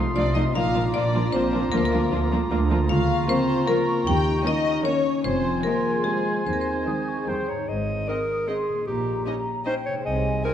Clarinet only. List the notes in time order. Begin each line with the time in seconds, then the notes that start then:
Already playing: F4
0.55 F4
2.91 F4
4.07 D#4
5.26 F4
6.47 D#4
7.28 C5
7.49 C#5
7.69 D#5
8.09 A#4
8.48 G#4
8.87 G4
9.66 C5
9.86 C#5
10.05 D#5
10.45 A#4